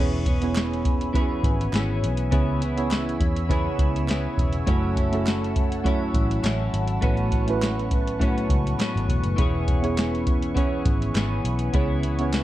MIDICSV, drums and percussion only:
0, 0, Header, 1, 2, 480
1, 0, Start_track
1, 0, Key_signature, 4, "major"
1, 0, Tempo, 588813
1, 1893, Time_signature, 4, 2, 24, 8
1, 10135, End_track
2, 0, Start_track
2, 0, Title_t, "Drums"
2, 212, Note_on_c, 9, 36, 85
2, 213, Note_on_c, 9, 42, 73
2, 294, Note_off_c, 9, 36, 0
2, 295, Note_off_c, 9, 42, 0
2, 340, Note_on_c, 9, 42, 56
2, 421, Note_off_c, 9, 42, 0
2, 451, Note_on_c, 9, 39, 89
2, 455, Note_on_c, 9, 42, 95
2, 465, Note_on_c, 9, 38, 106
2, 533, Note_off_c, 9, 39, 0
2, 536, Note_off_c, 9, 42, 0
2, 547, Note_off_c, 9, 38, 0
2, 599, Note_on_c, 9, 42, 36
2, 680, Note_off_c, 9, 42, 0
2, 693, Note_on_c, 9, 36, 102
2, 695, Note_on_c, 9, 42, 77
2, 775, Note_off_c, 9, 36, 0
2, 776, Note_off_c, 9, 42, 0
2, 824, Note_on_c, 9, 42, 56
2, 905, Note_off_c, 9, 42, 0
2, 930, Note_on_c, 9, 36, 101
2, 940, Note_on_c, 9, 42, 96
2, 1012, Note_off_c, 9, 36, 0
2, 1022, Note_off_c, 9, 42, 0
2, 1171, Note_on_c, 9, 36, 99
2, 1176, Note_on_c, 9, 42, 92
2, 1253, Note_off_c, 9, 36, 0
2, 1258, Note_off_c, 9, 42, 0
2, 1312, Note_on_c, 9, 42, 55
2, 1393, Note_off_c, 9, 42, 0
2, 1411, Note_on_c, 9, 39, 72
2, 1417, Note_on_c, 9, 42, 89
2, 1431, Note_on_c, 9, 38, 115
2, 1492, Note_off_c, 9, 39, 0
2, 1498, Note_off_c, 9, 42, 0
2, 1513, Note_off_c, 9, 38, 0
2, 1661, Note_on_c, 9, 42, 79
2, 1743, Note_off_c, 9, 42, 0
2, 1772, Note_on_c, 9, 42, 58
2, 1853, Note_off_c, 9, 42, 0
2, 1892, Note_on_c, 9, 42, 87
2, 1893, Note_on_c, 9, 36, 109
2, 1974, Note_off_c, 9, 42, 0
2, 1975, Note_off_c, 9, 36, 0
2, 2135, Note_on_c, 9, 42, 74
2, 2216, Note_off_c, 9, 42, 0
2, 2262, Note_on_c, 9, 42, 53
2, 2344, Note_off_c, 9, 42, 0
2, 2371, Note_on_c, 9, 39, 87
2, 2374, Note_on_c, 9, 42, 101
2, 2384, Note_on_c, 9, 38, 118
2, 2453, Note_off_c, 9, 39, 0
2, 2455, Note_off_c, 9, 42, 0
2, 2466, Note_off_c, 9, 38, 0
2, 2519, Note_on_c, 9, 42, 34
2, 2601, Note_off_c, 9, 42, 0
2, 2613, Note_on_c, 9, 36, 97
2, 2613, Note_on_c, 9, 42, 87
2, 2694, Note_off_c, 9, 36, 0
2, 2695, Note_off_c, 9, 42, 0
2, 2743, Note_on_c, 9, 42, 60
2, 2824, Note_off_c, 9, 42, 0
2, 2849, Note_on_c, 9, 36, 84
2, 2858, Note_on_c, 9, 42, 96
2, 2931, Note_off_c, 9, 36, 0
2, 2940, Note_off_c, 9, 42, 0
2, 3089, Note_on_c, 9, 36, 94
2, 3091, Note_on_c, 9, 42, 88
2, 3171, Note_off_c, 9, 36, 0
2, 3173, Note_off_c, 9, 42, 0
2, 3229, Note_on_c, 9, 42, 53
2, 3310, Note_off_c, 9, 42, 0
2, 3328, Note_on_c, 9, 39, 70
2, 3334, Note_on_c, 9, 42, 98
2, 3348, Note_on_c, 9, 38, 123
2, 3410, Note_off_c, 9, 39, 0
2, 3415, Note_off_c, 9, 42, 0
2, 3429, Note_off_c, 9, 38, 0
2, 3569, Note_on_c, 9, 36, 85
2, 3579, Note_on_c, 9, 42, 78
2, 3650, Note_off_c, 9, 36, 0
2, 3660, Note_off_c, 9, 42, 0
2, 3689, Note_on_c, 9, 42, 54
2, 3771, Note_off_c, 9, 42, 0
2, 3809, Note_on_c, 9, 42, 90
2, 3811, Note_on_c, 9, 36, 112
2, 3890, Note_off_c, 9, 42, 0
2, 3893, Note_off_c, 9, 36, 0
2, 4050, Note_on_c, 9, 36, 78
2, 4052, Note_on_c, 9, 42, 76
2, 4132, Note_off_c, 9, 36, 0
2, 4134, Note_off_c, 9, 42, 0
2, 4179, Note_on_c, 9, 42, 56
2, 4261, Note_off_c, 9, 42, 0
2, 4292, Note_on_c, 9, 39, 83
2, 4293, Note_on_c, 9, 42, 98
2, 4304, Note_on_c, 9, 38, 107
2, 4373, Note_off_c, 9, 39, 0
2, 4374, Note_off_c, 9, 42, 0
2, 4385, Note_off_c, 9, 38, 0
2, 4438, Note_on_c, 9, 42, 36
2, 4519, Note_off_c, 9, 42, 0
2, 4532, Note_on_c, 9, 36, 97
2, 4532, Note_on_c, 9, 42, 77
2, 4613, Note_off_c, 9, 36, 0
2, 4614, Note_off_c, 9, 42, 0
2, 4662, Note_on_c, 9, 42, 59
2, 4744, Note_off_c, 9, 42, 0
2, 4768, Note_on_c, 9, 36, 89
2, 4776, Note_on_c, 9, 42, 96
2, 4849, Note_off_c, 9, 36, 0
2, 4858, Note_off_c, 9, 42, 0
2, 5008, Note_on_c, 9, 36, 97
2, 5009, Note_on_c, 9, 42, 88
2, 5089, Note_off_c, 9, 36, 0
2, 5091, Note_off_c, 9, 42, 0
2, 5145, Note_on_c, 9, 42, 57
2, 5226, Note_off_c, 9, 42, 0
2, 5249, Note_on_c, 9, 42, 100
2, 5253, Note_on_c, 9, 39, 65
2, 5263, Note_on_c, 9, 38, 125
2, 5331, Note_off_c, 9, 42, 0
2, 5334, Note_off_c, 9, 39, 0
2, 5345, Note_off_c, 9, 38, 0
2, 5493, Note_on_c, 9, 42, 86
2, 5575, Note_off_c, 9, 42, 0
2, 5605, Note_on_c, 9, 42, 55
2, 5686, Note_off_c, 9, 42, 0
2, 5725, Note_on_c, 9, 42, 82
2, 5729, Note_on_c, 9, 36, 116
2, 5806, Note_off_c, 9, 42, 0
2, 5810, Note_off_c, 9, 36, 0
2, 5847, Note_on_c, 9, 42, 29
2, 5928, Note_off_c, 9, 42, 0
2, 5966, Note_on_c, 9, 42, 67
2, 5968, Note_on_c, 9, 36, 80
2, 6048, Note_off_c, 9, 42, 0
2, 6049, Note_off_c, 9, 36, 0
2, 6095, Note_on_c, 9, 42, 58
2, 6177, Note_off_c, 9, 42, 0
2, 6212, Note_on_c, 9, 42, 96
2, 6213, Note_on_c, 9, 39, 85
2, 6223, Note_on_c, 9, 38, 109
2, 6294, Note_off_c, 9, 39, 0
2, 6294, Note_off_c, 9, 42, 0
2, 6305, Note_off_c, 9, 38, 0
2, 6354, Note_on_c, 9, 42, 34
2, 6435, Note_off_c, 9, 42, 0
2, 6449, Note_on_c, 9, 42, 77
2, 6450, Note_on_c, 9, 36, 95
2, 6531, Note_off_c, 9, 36, 0
2, 6531, Note_off_c, 9, 42, 0
2, 6582, Note_on_c, 9, 42, 58
2, 6664, Note_off_c, 9, 42, 0
2, 6687, Note_on_c, 9, 36, 95
2, 6696, Note_on_c, 9, 42, 88
2, 6769, Note_off_c, 9, 36, 0
2, 6777, Note_off_c, 9, 42, 0
2, 6829, Note_on_c, 9, 42, 38
2, 6910, Note_off_c, 9, 42, 0
2, 6928, Note_on_c, 9, 36, 97
2, 6930, Note_on_c, 9, 42, 87
2, 7009, Note_off_c, 9, 36, 0
2, 7012, Note_off_c, 9, 42, 0
2, 7067, Note_on_c, 9, 42, 53
2, 7149, Note_off_c, 9, 42, 0
2, 7170, Note_on_c, 9, 42, 105
2, 7173, Note_on_c, 9, 39, 72
2, 7185, Note_on_c, 9, 38, 117
2, 7252, Note_off_c, 9, 42, 0
2, 7254, Note_off_c, 9, 39, 0
2, 7266, Note_off_c, 9, 38, 0
2, 7316, Note_on_c, 9, 42, 42
2, 7397, Note_off_c, 9, 42, 0
2, 7407, Note_on_c, 9, 36, 79
2, 7416, Note_on_c, 9, 42, 82
2, 7489, Note_off_c, 9, 36, 0
2, 7497, Note_off_c, 9, 42, 0
2, 7529, Note_on_c, 9, 42, 55
2, 7610, Note_off_c, 9, 42, 0
2, 7648, Note_on_c, 9, 42, 92
2, 7650, Note_on_c, 9, 36, 110
2, 7730, Note_off_c, 9, 42, 0
2, 7732, Note_off_c, 9, 36, 0
2, 7890, Note_on_c, 9, 36, 96
2, 7890, Note_on_c, 9, 42, 73
2, 7972, Note_off_c, 9, 36, 0
2, 7972, Note_off_c, 9, 42, 0
2, 8019, Note_on_c, 9, 42, 54
2, 8101, Note_off_c, 9, 42, 0
2, 8130, Note_on_c, 9, 42, 95
2, 8134, Note_on_c, 9, 39, 83
2, 8140, Note_on_c, 9, 38, 100
2, 8211, Note_off_c, 9, 42, 0
2, 8216, Note_off_c, 9, 39, 0
2, 8222, Note_off_c, 9, 38, 0
2, 8272, Note_on_c, 9, 42, 33
2, 8354, Note_off_c, 9, 42, 0
2, 8370, Note_on_c, 9, 36, 105
2, 8370, Note_on_c, 9, 42, 73
2, 8452, Note_off_c, 9, 36, 0
2, 8452, Note_off_c, 9, 42, 0
2, 8498, Note_on_c, 9, 42, 55
2, 8579, Note_off_c, 9, 42, 0
2, 8608, Note_on_c, 9, 36, 92
2, 8615, Note_on_c, 9, 42, 89
2, 8689, Note_off_c, 9, 36, 0
2, 8696, Note_off_c, 9, 42, 0
2, 8848, Note_on_c, 9, 36, 99
2, 8849, Note_on_c, 9, 42, 96
2, 8930, Note_off_c, 9, 36, 0
2, 8930, Note_off_c, 9, 42, 0
2, 8984, Note_on_c, 9, 42, 53
2, 9065, Note_off_c, 9, 42, 0
2, 9089, Note_on_c, 9, 42, 99
2, 9092, Note_on_c, 9, 39, 69
2, 9103, Note_on_c, 9, 38, 120
2, 9170, Note_off_c, 9, 42, 0
2, 9173, Note_off_c, 9, 39, 0
2, 9185, Note_off_c, 9, 38, 0
2, 9334, Note_on_c, 9, 42, 89
2, 9416, Note_off_c, 9, 42, 0
2, 9447, Note_on_c, 9, 42, 56
2, 9529, Note_off_c, 9, 42, 0
2, 9567, Note_on_c, 9, 42, 83
2, 9570, Note_on_c, 9, 36, 123
2, 9649, Note_off_c, 9, 42, 0
2, 9652, Note_off_c, 9, 36, 0
2, 9810, Note_on_c, 9, 42, 72
2, 9891, Note_off_c, 9, 42, 0
2, 9935, Note_on_c, 9, 42, 56
2, 10016, Note_off_c, 9, 42, 0
2, 10048, Note_on_c, 9, 42, 98
2, 10053, Note_on_c, 9, 39, 78
2, 10059, Note_on_c, 9, 38, 111
2, 10130, Note_off_c, 9, 42, 0
2, 10135, Note_off_c, 9, 38, 0
2, 10135, Note_off_c, 9, 39, 0
2, 10135, End_track
0, 0, End_of_file